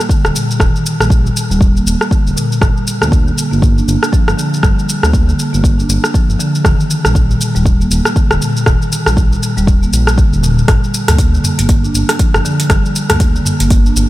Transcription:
0.00 shaker
0.09 marimba D3, kick, shaker
0.24 analog synth bass D#1, cross-stick, shaker
0.35 marimba A#2, shaker
0.51 shaker
0.60 analog synth bass D#1, kick, cross-stick, shaker
0.76 shaker
0.86 shaker
1.00 analog synth bass A#1, marimba G3, cross-stick, shaker
1.10 kick, shaker
1.25 marimba A#2, shaker
1.37 shaker
1.50 analog synth bass D#1, marimba G3, shaker
1.61 kick, shaker
1.76 marimba A#3, shaker
1.86 analog synth bass D#1, shaker
2.01 cross-stick, shaker
2.11 marimba D3, kick, shaker
2.26 analog synth bass D#1, shaker
2.36 marimba A#2, shaker
2.52 shaker
2.61 analog synth bass G1, kick, cross-stick, shaker
2.77 shaker
2.87 shaker
3.01 analog synth bass D2, marimba A#3, cross-stick, shaker
3.12 kick, shaker
3.26 marimba D3, shaker
3.38 shaker
3.52 analog synth bass G1, marimba A#3, shaker
3.62 kick, shaker
3.77 marimba D4, shaker
3.88 analog synth bass G1, shaker
4.03 cross-stick, shaker
4.12 marimba F3, kick, shaker
4.28 analog synth bass G1, cross-stick, shaker
4.37 marimba D3, shaker
4.54 shaker
4.63 analog synth bass G1, marimba G3, kick, cross-stick, shaker
4.79 shaker
4.89 shaker
5.03 analog synth bass D2, marimba A#3, cross-stick, shaker
5.13 kick, shaker
5.28 marimba D3, shaker
5.39 shaker
5.53 analog synth bass G1, marimba A#3, shaker
5.64 kick, shaker
5.78 marimba D4, shaker
5.89 analog synth bass G1, shaker
6.04 cross-stick, shaker
6.14 marimba F3, kick, shaker
6.29 analog synth bass G1, shaker
6.39 marimba D3, shaker
6.55 shaker
6.65 analog synth bass D#1, kick, cross-stick, shaker
6.80 shaker
6.90 shaker
7.05 analog synth bass A#1, marimba G3, cross-stick, shaker
7.15 kick, shaker
7.30 marimba A#2, shaker
7.41 shaker
7.55 analog synth bass D#1, marimba G3, shaker
7.66 kick, shaker
7.80 marimba A#3, shaker
7.91 analog synth bass D#1, shaker
8.05 cross-stick, shaker
8.16 marimba D3, kick, shaker
8.31 analog synth bass D#1, cross-stick, shaker
8.41 marimba A#2, shaker
8.57 shaker
8.66 analog synth bass D#1, marimba D#3, kick, cross-stick, shaker
8.82 shaker
8.92 shaker
9.06 analog synth bass A#1, marimba G3, cross-stick, shaker
9.17 kick, shaker
9.32 marimba A#2, shaker
9.43 shaker
9.57 analog synth bass D#1, marimba G3, shaker
9.67 kick, shaker
9.82 marimba A#3, shaker
9.93 analog synth bass A#1, shaker
10.07 cross-stick, shaker
10.18 marimba D3, kick, shaker
10.33 analog synth bass D#1, shaker
10.43 marimba A#2, shaker
10.58 shaker
10.68 analog synth bass G1, kick, cross-stick, closed hi-hat, shaker
10.84 shaker
10.94 shaker
11.08 analog synth bass D2, marimba A#3, cross-stick, closed hi-hat, mid tom, shaker
11.19 kick, closed hi-hat, shaker
11.33 marimba D3, shaker
11.44 mid tom, shaker
11.58 analog synth bass G1, marimba A#3, closed hi-hat, shaker
11.69 kick, closed hi-hat, shaker
11.84 marimba D4, shaker
11.94 analog synth bass G1, shaker
12.09 cross-stick, closed hi-hat, shaker
12.19 marimba F3, kick, closed hi-hat, shaker
12.34 analog synth bass G1, cross-stick, mid tom, shaker
12.45 marimba D3, shaker
12.60 closed hi-hat, shaker
12.70 analog synth bass G1, marimba G3, kick, cross-stick, closed hi-hat, shaker
12.85 shaker
12.96 shaker
13.10 analog synth bass D2, marimba A#3, cross-stick, closed hi-hat, mid tom, shaker
13.20 kick, closed hi-hat, shaker
13.35 marimba D3, shaker
13.45 mid tom, shaker
13.60 analog synth bass G1, marimba A#3, closed hi-hat, shaker
13.70 kick, closed hi-hat, shaker
13.85 marimba D4, shaker
13.96 analog synth bass G1, shaker

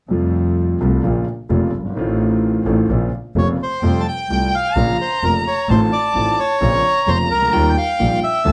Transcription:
0.08 grand piano F2 C3 F3 G3 A3, double bass F2
0.13 grand piano F4
0.81 grand piano C2 C3 G3 A3 F4, double bass C2
1.03 grand piano A#1 A#2 C#3 F3 A#3 F4, double bass A#1
1.49 grand piano F1 F2 C#3 F3 A#3 F4, double bass F1
1.75 double bass G1
1.79 grand piano F#1
1.85 grand piano G1
1.90 grand piano G#1
1.95 grand piano A1 A2 D#3 A3 C4 F4, double bass A1
2.65 double bass A1, grand piano A1 A2 D#3 A3 C4 F4
2.89 double bass A#1, grand piano A#1 A#2 C#3 A#3 C4 F4
3.35 double bass F1, grand piano F1 F2 C#3 A#3 C4 F4, bandoneon C#5
3.63 bandoneon C5
3.83 double bass F2, grand piano F2 C3 F3 G3 A3 F4, violin G5
4.00 bandoneon A5
4.08 bandoneon G5
4.29 double bass C2, grand piano C2 C3 G3 A3 F4
4.55 bandoneon F5
4.76 grand piano A#1 A#2 C#3 F3 A#3 F4, double bass A#1, violin A#5
5.01 bandoneon C5
5.23 double bass F1, grand piano F1 F2 C#3 F3 A#3 F4, bandoneon A#4
5.47 bandoneon C#5
5.69 double bass A1, grand piano A1 A2 D#3 A3 C4 F4, bandoneon C5, violin A5
5.92 bandoneon D5
6.15 double bass A1, grand piano A1 A2 D#3 A3 C4 F4
6.39 bandoneon C#5
6.61 grand piano A#1 A#2 C#3 A#3 C4 F4, double bass A#1, violin A#5
7.07 double bass F1, grand piano F1 F2 C#3 A#3 C4 F4, bandoneon C5
7.31 double bass C#2, bandoneon A#4
7.37 grand piano C2
7.42 grand piano C#2
7.48 grand piano D2
7.53 grand piano D#2 D#3 G3 A#3 F4, double bass D#2, violin G5
7.70 bandoneon G5
7.77 bandoneon F5
7.99 grand piano A#1 A#2 D#3 G3 A#3 F4, double bass A#1
8.24 bandoneon E5
8.45 grand piano D2 D3 A#3 C4 F4, double bass D2, violin A5

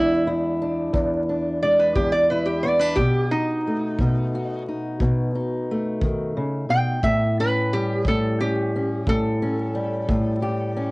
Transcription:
Already playing: steel-string acoustic guitar E2 G#3 D4 E4, resonator guitar played with a steel bar E4
0.27 steel-string acoustic guitar E4
0.62 steel-string acoustic guitar D4
0.93 steel-string acoustic guitar E2, kick
1.29 steel-string acoustic guitar D4
1.62 steel-string acoustic guitar G#3, resonator guitar played with a steel bar D5
1.79 resonator guitar played with a steel bar B4
1.95 steel-string acoustic guitar E2, resonator guitar played with a steel bar G4, kick
2.12 resonator guitar played with a steel bar D5
2.30 steel-string acoustic guitar E4, resonator guitar played with a steel bar B4
2.46 resonator guitar played with a steel bar G4
2.63 steel-string acoustic guitar B3, resonator guitar played with a steel bar D5
2.79 steel-string acoustic guitar D4, resonator guitar played with a steel bar B4
2.96 steel-string acoustic guitar B2, resonator guitar played with a steel bar G4, kick
3.31 resonator guitar played with a steel bar D#4, steel-string acoustic guitar D#4
3.67 steel-string acoustic guitar A3
3.99 steel-string acoustic guitar B2, kick
4.35 steel-string acoustic guitar F#4
4.68 steel-string acoustic guitar D#4
5.00 steel-string acoustic guitar B2, kick
5.35 steel-string acoustic guitar D#4
5.71 steel-string acoustic guitar A3
6.01 steel-string acoustic guitar D#3, kick
6.37 steel-string acoustic guitar C#3
6.69 steel-string acoustic guitar B2, resonator guitar played with a steel bar G5
7.03 steel-string acoustic guitar A2, resonator guitar played with a steel bar E5, kick
7.40 steel-string acoustic guitar C#4, resonator guitar played with a steel bar B4
7.73 steel-string acoustic guitar G3, resonator guitar played with a steel bar G4
8.05 steel-string acoustic guitar A2, resonator guitar played with a steel bar A4, kick
8.41 steel-string acoustic guitar C#4, resonator guitar played with a steel bar G4
8.76 steel-string acoustic guitar C#4
9.07 steel-string acoustic guitar A2, resonator guitar played with a steel bar A4, kick
9.42 steel-string acoustic guitar C#4
9.75 steel-string acoustic guitar G3
10.09 steel-string acoustic guitar A2, kick
10.42 steel-string acoustic guitar G4
10.76 steel-string acoustic guitar C#4

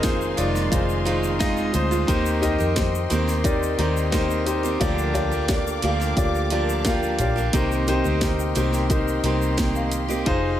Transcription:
Already playing: fingered electric bass F1, steel-string acoustic guitar D#3 G#3 C4 F4, grand piano D#4 F4 G#4 A#4 C5, string section G#4 D#5 F5 C6
0.03 grand piano D#4 F4 G#4 C5, kick, snare, closed hi-hat, shaker
0.21 shaker
0.37 fingered electric bass F1, steel-string acoustic guitar D#3 G#3 C4 F4, grand piano D#4 F4 G#4 D5, closed hi-hat, shaker
0.55 snare, shaker
0.71 fingered electric bass F1, grand piano D#4 F4 G#4 C5, kick, closed hi-hat, shaker
0.89 shaker
1.05 steel-string acoustic guitar D#3 G#3 C4 F4, grand piano D#4 F4 G#4 C5, closed hi-hat
1.23 shaker
1.39 steel-string acoustic guitar D#3 G#3 C4 F4, grand piano D#4 F4 G#4 D#5, kick, snare, closed hi-hat, shaker
1.57 shaker
1.73 fingered electric bass D2, grand piano D#4 F4 G#4 C5, closed hi-hat, shaker
1.91 steel-string acoustic guitar D#3 G#3 C4 F4, shaker
2.07 fingered electric bass D#2, grand piano D#3 D#4 G4 A#4 C5, steel-string acoustic guitar D#3 A#3 C4 G4, string section A#4 G5, kick, closed hi-hat, shaker
2.26 shaker
2.41 grand piano D#4 G4 A#4 D#5, closed hi-hat, floor tom, shaker
2.58 fingered electric bass F2, steel-string acoustic guitar A#3 C4 G4, shaker
2.75 grand piano D#4 G4 A#4 C5, kick, snare, closed hi-hat, shaker
2.95 shaker
3.10 fingered electric bass D#2, steel-string acoustic guitar D#3 A#3 C4 G4, grand piano D#4 G4 A#4 C5, closed hi-hat, shaker
3.28 snare, shaker
3.44 grand piano D#4 G4 A#4 D5, kick, closed hi-hat, shaker
3.63 shaker
3.78 fingered electric bass D#2, steel-string acoustic guitar D#3 A#3 C4 G4, grand piano D#4 G4 A#4 C5, closed hi-hat
3.97 shaker
4.12 steel-string acoustic guitar D#3 A#3 C4 G4, grand piano D#4 G4 A#4 C5, kick, snare, closed hi-hat, shaker
4.30 shaker
4.45 grand piano D#4 G4 A#4 C5, closed hi-hat, shaker
4.63 steel-string acoustic guitar A#3 C4 G4, shaker
4.80 fingered electric bass D2, grand piano D3 F4 G4 A#4 D5, steel-string acoustic guitar D3 F3 A#3 D4 G4, string section F5 D6, kick, closed hi-hat, shaker
4.98 shaker
5.14 grand piano F4 G4 A#4 D5, closed hi-hat, floor tom, shaker
5.31 steel-string acoustic guitar A#3 D4 G4, shaker
5.48 grand piano F4 G4 A#4 D5, kick, snare, closed hi-hat, shaker
5.67 shaker
5.82 fingered electric bass D2, steel-string acoustic guitar F3 A#3 D4 G4, grand piano F4 G4 A#4 F5, closed hi-hat
6.00 snare, shaker
6.17 fingered electric bass D2, grand piano F4 G4 A#4 D5, kick, closed hi-hat, shaker
6.35 shaker
6.50 steel-string acoustic guitar F3 A#3 D4 G4, grand piano F4 G4 A#4 D5, closed hi-hat
6.69 shaker
6.84 steel-string acoustic guitar F3 A#3 D4 G4, grand piano F4 G4 A#4 F5, kick, snare, closed hi-hat, shaker
7.03 shaker
7.19 fingered electric bass A#1, grand piano F4 G4 A#4 D5, closed hi-hat, floor tom, shaker
7.36 steel-string acoustic guitar A#3 D4 G4, shaker
7.53 fingered electric bass C2, steel-string acoustic guitar C3 D#3 A#3 C4 G4, grand piano C3 D#4 G4 A#4 C5, string section D#5 G5 C6, kick, closed hi-hat, shaker
7.72 shaker
7.88 grand piano D#4 G4 A#4 C5, closed hi-hat, floor tom, shaker
8.04 fingered electric bass D2, steel-string acoustic guitar A#3 C4 G4, shaker
8.21 grand piano D#4 G4 A#4 C5, kick, snare, closed hi-hat, shaker
8.39 shaker
8.55 fingered electric bass C2, steel-string acoustic guitar D#3 A#3 C4 G4, grand piano D#4 G4 A#4 C5, closed hi-hat, shaker
8.73 snare, shaker
8.90 grand piano D#4 G4 A#4 C5, kick, closed hi-hat, shaker
9.08 shaker
9.23 fingered electric bass C2, steel-string acoustic guitar D#3 A#3 C4 G4, grand piano D#4 G4 A#4 C5, closed hi-hat
9.42 shaker
9.57 steel-string acoustic guitar D#3 A#3 C4 G4, grand piano A#4 G5, kick, snare, closed hi-hat, shaker
9.75 grand piano F5, shaker
9.92 closed hi-hat, shaker
10.08 steel-string acoustic guitar A#3 C4 G4, grand piano G4 D#5, shaker
10.26 fingered electric bass F1, grand piano D#4 F4 G#4 C5, string section G#4 F5, kick, closed hi-hat

